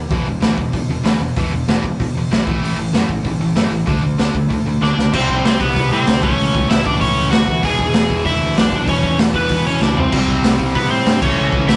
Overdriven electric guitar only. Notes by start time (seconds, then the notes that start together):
4.83 D4 D5
5.14 C4 C5
5.45 C4 C5
5.59 B3 B4
5.93 C4 C5
6.24 C#4 C#5
6.70 E4 E5
6.86 D4 D5
7.01 C#4 C#5
7.31 F#4 F#5
7.64 G#4 G#5
8.26 E4 E5
8.58 D4 D5
8.89 C#4 C#5
9.36 B3 B4
9.67 C#4 C#5
9.82 D4 D5
9.99 C4 C5
10.75 B3 B4
10.91 C4 C5
11.22 C#4 C#5
11.68 E4 E5